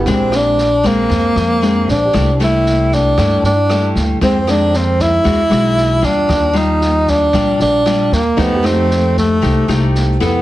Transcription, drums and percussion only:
0.06 kick, snare
0.32 cross-stick, snare
0.58 snare
0.84 kick, snare
1.10 kick, snare
1.36 cross-stick, snare
1.62 snare
1.88 kick, snare
2.14 kick, cross-stick, snare
2.40 snare
2.66 snare
2.92 kick, snare
3.18 kick, cross-stick, snare
3.44 snare
3.70 cross-stick, snare
3.95 kick, snare
4.21 kick, snare
4.47 cross-stick, snare
4.73 snare
4.99 kick, snare
5.25 kick, snare
5.51 cross-stick, snare
5.77 snare
6.03 kick, snare
6.29 kick, cross-stick, snare
6.55 snare
6.81 snare
7.07 kick, snare
7.33 kick, cross-stick, snare
7.59 snare
7.86 cross-stick, snare
8.12 kick, snare
8.38 kick, snare
8.65 cross-stick, snare
8.91 snare
9.16 kick, snare
9.43 kick, snare
9.69 cross-stick, snare
9.95 snare
10.21 kick, snare

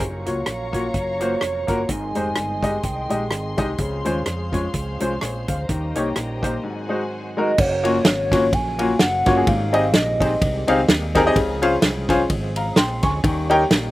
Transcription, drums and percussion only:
0.00 kick, closed hi-hat
0.26 closed hi-hat
0.46 cross-stick, closed hi-hat
0.73 kick, closed hi-hat
0.94 kick, closed hi-hat
1.20 closed hi-hat
1.41 cross-stick, closed hi-hat
1.68 kick, closed hi-hat
1.89 kick, closed hi-hat
2.15 closed hi-hat
2.35 cross-stick, closed hi-hat
2.63 kick, cross-stick, closed hi-hat
2.83 kick, closed hi-hat
3.10 closed hi-hat
3.31 cross-stick, closed hi-hat
3.58 kick, cross-stick, closed hi-hat
3.78 kick, closed hi-hat
4.05 closed hi-hat
4.26 cross-stick, closed hi-hat
4.53 kick, cross-stick, closed hi-hat
4.74 kick, closed hi-hat
5.00 closed hi-hat
5.21 cross-stick, closed hi-hat
5.48 kick, closed hi-hat
5.69 kick, closed hi-hat
5.95 closed hi-hat
6.16 cross-stick, closed hi-hat
6.43 kick, closed hi-hat
7.58 kick, crash
7.85 ride
8.05 snare, ride
8.32 kick, snare, ride
8.53 kick, ride
8.79 ride
8.99 snare, ride
9.26 kick, snare, ride
9.47 kick, ride
9.74 ride
9.94 snare, ride
10.21 kick, ride
10.42 kick, ride
10.68 ride
10.89 snare, ride
11.15 kick, snare, ride
11.36 kick, ride
11.62 ride
11.82 snare, ride
12.09 kick, snare, ride
12.30 kick, ride
12.56 ride
12.76 snare, ride
13.03 kick, snare, ride
13.24 kick, ride
13.51 ride
13.71 snare, ride

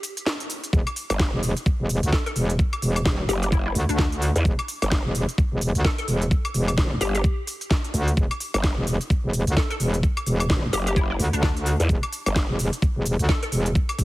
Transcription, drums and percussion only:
0.03 open hi-hat, cabasa
0.17 closed hi-hat, cabasa
0.26 snare, cabasa
0.40 closed hi-hat
0.50 open hi-hat, cabasa
0.64 closed hi-hat, cabasa
0.73 kick, cabasa
0.87 closed hi-hat, high woodblock
0.96 open hi-hat, cabasa
1.10 closed hi-hat, cabasa, high woodblock
1.19 kick, snare, cabasa
1.43 open hi-hat, cabasa
1.57 closed hi-hat, cabasa
1.66 kick, cabasa
1.89 open hi-hat, cabasa
2.03 closed hi-hat, cabasa
2.13 kick, snare, cabasa
2.26 closed hi-hat
2.36 open hi-hat, cabasa
2.50 closed hi-hat, cabasa
2.59 kick, cabasa
2.73 closed hi-hat, high woodblock
2.82 open hi-hat, cabasa
2.96 closed hi-hat, cabasa, high woodblock
3.05 kick, snare, cabasa
3.29 open hi-hat, cabasa
3.43 closed hi-hat, cabasa
3.52 kick, cabasa
3.75 open hi-hat, cabasa
3.89 closed hi-hat, cabasa
3.99 kick, snare, cabasa
4.12 closed hi-hat
4.22 open hi-hat, cabasa
4.36 closed hi-hat, cabasa
4.45 kick, cabasa
4.59 closed hi-hat, high woodblock
4.68 open hi-hat, cabasa
4.82 closed hi-hat, cabasa, high woodblock
4.92 kick, snare, cabasa
5.15 open hi-hat, cabasa
5.29 closed hi-hat, cabasa
5.38 kick, cabasa
5.61 open hi-hat, cabasa
5.75 closed hi-hat, cabasa
5.85 kick, snare, cabasa
5.98 closed hi-hat
6.08 open hi-hat, cabasa
6.22 closed hi-hat, cabasa
6.31 kick, cabasa
6.45 closed hi-hat, high woodblock
6.54 open hi-hat, cabasa
6.68 closed hi-hat, cabasa, high woodblock
6.78 kick, snare, cabasa
7.01 open hi-hat, cabasa
7.15 closed hi-hat, cabasa
7.24 kick, cabasa
7.47 open hi-hat, cabasa
7.61 closed hi-hat, cabasa
7.71 kick, snare, cabasa
7.84 closed hi-hat
7.94 open hi-hat, cabasa
8.08 closed hi-hat, cabasa
8.17 kick, cabasa
8.31 closed hi-hat, high woodblock
8.40 open hi-hat, cabasa
8.54 closed hi-hat, cabasa, high woodblock
8.64 kick, snare, cabasa
8.87 open hi-hat, cabasa
9.01 closed hi-hat, cabasa
9.10 kick, cabasa
9.33 open hi-hat, cabasa
9.47 closed hi-hat, cabasa
9.57 kick, snare, cabasa
9.71 closed hi-hat
9.80 open hi-hat, cabasa
9.94 closed hi-hat, cabasa
10.03 kick, cabasa
10.17 closed hi-hat, high woodblock
10.26 open hi-hat, cabasa
10.40 closed hi-hat, cabasa, high woodblock
10.50 kick, snare, cabasa
10.73 open hi-hat, cabasa
10.87 closed hi-hat, cabasa
10.96 kick, cabasa
11.20 open hi-hat, cabasa
11.33 closed hi-hat, cabasa
11.43 kick, snare, cabasa
11.57 closed hi-hat
11.66 open hi-hat, cabasa
11.80 closed hi-hat, cabasa
11.89 kick, cabasa
12.03 closed hi-hat, high woodblock
12.13 open hi-hat, cabasa
12.26 closed hi-hat, cabasa, high woodblock
12.36 kick, snare, cabasa
12.59 open hi-hat, cabasa
12.73 closed hi-hat, cabasa
12.82 kick, cabasa
13.06 open hi-hat, cabasa
13.19 closed hi-hat, cabasa
13.29 kick, snare, cabasa
13.43 closed hi-hat
13.52 open hi-hat, cabasa
13.66 closed hi-hat, cabasa
13.75 kick, cabasa
13.89 closed hi-hat, high woodblock
13.99 kick, open hi-hat, cabasa

